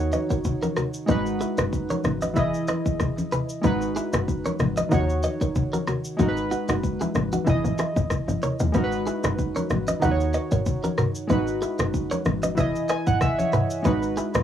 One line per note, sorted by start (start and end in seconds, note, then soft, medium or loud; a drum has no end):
0.00 0.17 D#2 loud
0.00 1.05 D#3 medium
0.00 1.06 D#4 medium
0.00 1.07 F#4 medium
0.00 1.08 C#5 medium
0.13 0.26 B4 medium
0.13 0.25 D#5 medium
0.13 high conga medium
0.13 shaker medium
0.31 0.41 A#4 medium
0.31 0.41 C#5 medium
0.31 kick loud
0.31 shaker medium
0.45 kick loud
0.45 low conga medium
0.45 shaker medium
0.63 0.73 F#4 medium
0.63 0.73 A#4 medium
0.63 high conga medium
0.63 shaker soft
0.77 0.90 F#4 medium
0.77 0.89 A#4 medium
0.77 cross-stick medium
0.77 low conga medium
0.77 shaker soft
0.94 shaker medium
1.06 1.44 G#1 loud
1.06 2.33 G#3 medium
1.06 2.33 D#4 medium
1.06 2.34 F#4 medium
1.06 1.22 G#4 medium
1.06 1.21 B4 medium
1.06 kick loud
1.06 shaker medium
1.11 2.35 B4 medium
1.26 shaker medium
1.41 1.53 E4 medium
1.41 1.53 G#4 medium
1.41 shaker medium
1.58 1.92 F#1 medium
1.58 1.69 G#4 medium
1.58 1.68 B4 medium
1.58 cross-stick loud
1.58 shaker medium
1.73 kick medium
1.73 shaker medium
1.90 2.01 A#4 medium
1.90 2.00 C#5 medium
1.90 high conga medium
1.90 shaker medium
2.04 2.38 G#1 medium
2.04 cross-stick medium
2.04 high conga medium
2.04 low conga medium
2.04 shaker medium
2.22 2.33 B4 medium
2.22 2.32 D#5 medium
2.22 high conga medium
2.22 shaker medium
2.34 2.72 E1 loud
2.34 3.60 E3 medium
2.34 3.61 E4 medium
2.34 3.62 G#4 medium
2.34 2.49 B4 medium
2.34 2.49 E5 medium
2.34 kick loud
2.34 low conga medium
2.34 shaker medium
2.39 3.63 D#5 medium
2.54 shaker soft
2.68 2.81 B4 medium
2.68 2.81 D#5 medium
2.68 cross-stick medium
2.68 high conga medium
2.68 shaker medium
2.86 kick loud
2.86 shaker medium
3.00 kick loud
3.00 cross-stick medium
3.00 low conga medium
3.00 shaker medium
3.18 high conga medium
3.18 shaker soft
3.32 3.45 G#4 medium
3.32 3.45 B4 medium
3.32 low conga medium
3.32 shaker soft
3.49 shaker medium
3.62 4.00 G#1 loud
3.62 4.88 G#3 medium
3.62 4.89 D#4 medium
3.62 4.90 F#4 medium
3.62 3.77 G#4 medium
3.62 3.76 B4 medium
3.62 kick loud
3.62 shaker medium
3.67 4.90 B4 medium
3.82 shaker medium
3.96 4.09 E4 medium
3.96 4.08 G#4 medium
3.96 shaker medium
4.13 4.47 F#1 loud
4.13 4.24 G#4 medium
4.13 4.24 B4 medium
4.13 cross-stick loud
4.13 shaker medium
4.28 kick medium
4.28 shaker medium
4.46 4.56 A#4 medium
4.46 4.56 C#5 medium
4.46 high conga medium
4.46 shaker medium
4.59 4.83 G#1 medium
4.59 cross-stick medium
4.59 high conga medium
4.59 low conga medium
4.59 shaker soft
4.77 4.88 B4 medium
4.77 4.88 D#5 medium
4.77 high conga medium
4.77 shaker medium
4.89 5.27 D#2 loud
4.89 6.15 D#3 medium
4.89 6.16 D#4 medium
4.89 6.17 F#4 medium
4.89 5.05 D#5 medium
4.89 5.04 F#5 medium
4.89 kick loud
4.89 low conga medium
4.89 shaker medium
4.94 6.18 C#5 medium
5.09 shaker soft
5.23 5.37 B4 medium
5.23 5.36 D#5 medium
5.23 high conga medium
5.23 shaker medium
5.41 5.52 A#4 medium
5.41 5.51 C#5 medium
5.41 kick medium
5.41 shaker medium
5.55 kick loud
5.55 low conga medium
5.55 shaker medium
5.73 5.84 F#4 medium
5.73 5.83 A#4 medium
5.73 high conga medium
5.73 shaker medium
5.87 6.00 F#4 medium
5.87 6.00 A#4 medium
5.87 cross-stick medium
5.87 low conga medium
5.87 shaker soft
6.05 shaker medium
6.17 6.55 G#1 loud
6.17 7.43 G#3 medium
6.17 7.44 D#4 medium
6.17 6.32 D#4 medium
6.17 7.45 F#4 medium
6.17 6.32 G#4 medium
6.17 kick loud
6.17 shaker medium
6.22 6.28 A#4 medium
6.28 7.49 B4 medium
6.37 shaker soft
6.51 6.64 D#4 medium
6.51 6.64 F#4 medium
6.51 shaker medium
6.69 7.02 F#1 medium
6.69 6.79 D#4 medium
6.69 6.79 F#4 medium
6.69 cross-stick loud
6.69 shaker medium
6.83 kick medium
6.83 shaker medium
7.01 7.11 E4 medium
7.01 7.11 G#4 medium
7.01 high conga medium
7.01 shaker medium
7.15 7.38 G#1 medium
7.15 cross-stick medium
7.15 high conga medium
7.15 low conga medium
7.15 shaker soft
7.32 7.43 D#4 medium
7.32 7.43 F#4 medium
7.32 high conga medium
7.32 shaker medium
7.44 7.60 E1 loud
7.44 8.71 E3 medium
7.44 8.72 E4 medium
7.44 7.60 E4 medium
7.44 7.59 G#4 medium
7.44 8.72 G#4 medium
7.44 kick loud
7.44 low conga medium
7.44 shaker medium
7.49 8.73 D#5 medium
7.64 7.75 G#1 medium
7.64 shaker soft
7.78 7.92 E4 medium
7.78 7.91 G#4 medium
7.78 cross-stick medium
7.78 high conga medium
7.78 shaker medium
7.96 8.07 E1 medium
7.96 kick loud
7.96 shaker medium
8.10 kick medium
8.10 cross-stick medium
8.10 low conga medium
8.10 shaker medium
8.28 8.39 F#1 medium
8.28 high conga medium
8.28 shaker soft
8.43 8.56 A#4 medium
8.43 8.55 C#5 medium
8.43 low conga medium
8.43 shaker soft
8.60 8.71 D#2 medium
8.60 shaker medium
8.72 9.10 G#1 loud
8.72 9.98 G#3 medium
8.72 9.99 D#4 medium
8.72 10.00 F#4 medium
8.72 8.88 G#4 medium
8.72 8.87 B4 medium
8.72 kick loud
8.72 shaker medium
8.77 8.83 A#4 medium
8.84 10.04 B4 medium
8.92 shaker medium
9.07 9.19 E4 medium
9.07 9.19 G#4 medium
9.07 shaker medium
9.24 9.57 F#1 loud
9.24 9.35 G#4 medium
9.24 9.34 B4 medium
9.24 cross-stick loud
9.24 shaker medium
9.39 kick medium
9.39 shaker medium
9.56 9.67 A#4 medium
9.56 9.66 C#5 medium
9.56 high conga medium
9.56 shaker medium
9.70 9.93 G#1 medium
9.70 cross-stick medium
9.70 high conga medium
9.70 shaker soft
9.88 9.99 B4 medium
9.88 9.98 D#5 medium
9.88 high conga medium
9.88 shaker medium
10.00 10.38 D#2 medium
10.00 11.26 D#3 medium
10.00 11.27 D#4 medium
10.00 11.28 F#4 medium
10.00 10.15 D#5 medium
10.00 10.15 F#5 medium
10.00 kick loud
10.00 low conga medium
10.00 shaker medium
10.05 10.11 B4 medium
10.11 11.32 C#5 medium
10.20 shaker soft
10.34 10.47 B4 medium
10.34 10.47 D#5 medium
10.34 shaker medium
10.52 10.62 A#4 medium
10.52 10.62 C#5 medium
10.52 kick loud
10.52 mid tom medium
10.52 shaker medium
10.66 kick medium
10.66 low conga medium
10.66 shaker medium
10.84 10.94 F#4 medium
10.84 10.94 A#4 medium
10.84 high conga medium
10.84 shaker medium
10.98 11.11 F#4 medium
10.98 11.10 A#4 medium
10.98 cross-stick medium
10.98 mid tom medium
10.98 low conga medium
10.98 shaker soft
11.15 shaker medium
11.27 11.66 G#1 loud
11.27 12.54 G#3 medium
11.27 12.55 D#4 medium
11.27 12.55 F#4 medium
11.27 11.43 G#4 medium
11.27 11.42 B4 medium
11.27 kick loud
11.27 shaker medium
11.32 12.56 B4 medium
11.47 shaker soft
11.62 11.75 E4 medium
11.62 11.74 G#4 medium
11.62 shaker medium
11.79 12.13 F#1 medium
11.79 11.90 G#4 medium
11.79 11.90 B4 medium
11.79 cross-stick loud
11.79 shaker medium
11.94 kick medium
11.94 shaker medium
12.11 12.22 A#4 medium
12.11 12.21 C#5 medium
12.11 high conga medium
12.11 shaker medium
12.25 12.59 G#1 medium
12.25 cross-stick medium
12.25 high conga medium
12.25 shaker soft
12.43 12.54 B4 medium
12.43 12.53 D#5 medium
12.43 high conga medium
12.43 shaker medium
12.55 12.93 E1 loud
12.55 13.81 E3 medium
12.55 13.82 E4 medium
12.55 13.83 G#4 medium
12.55 12.70 B4 medium
12.55 12.70 E5 medium
12.55 kick loud
12.55 low conga medium
12.55 shaker medium
12.60 13.84 D#5 medium
12.75 shaker soft
12.89 13.02 B4 medium
12.89 13.02 D#5 medium
12.89 13.06 G#5 medium
12.89 cross-stick medium
12.89 shaker medium
13.07 13.20 F#5 medium
13.07 kick loud
13.07 mid tom medium
13.07 shaker medium
13.21 13.38 E5 medium
13.21 kick loud
13.21 cross-stick medium
13.21 low conga medium
13.21 shaker medium
13.39 13.82 C#5 medium
13.39 high conga medium
13.39 shaker medium
13.53 13.66 G#4 medium
13.53 13.66 B4 medium
13.53 mid tom medium
13.53 low conga medium
13.53 shaker soft
13.70 shaker medium
13.83 14.21 G#1 loud
13.83 14.43 G#3 medium
13.83 14.43 D#4 medium
13.83 14.43 F#4 medium
13.83 13.98 G#4 medium
13.83 13.98 B4 medium
13.83 kick loud
13.83 shaker medium
13.88 14.43 B4 medium
14.03 shaker medium
14.17 14.30 E4 medium
14.17 14.29 G#4 medium
14.17 shaker medium
14.34 14.43 F#1 loud
14.34 14.43 G#4 medium
14.34 14.43 B4 medium
14.34 cross-stick loud
14.34 shaker medium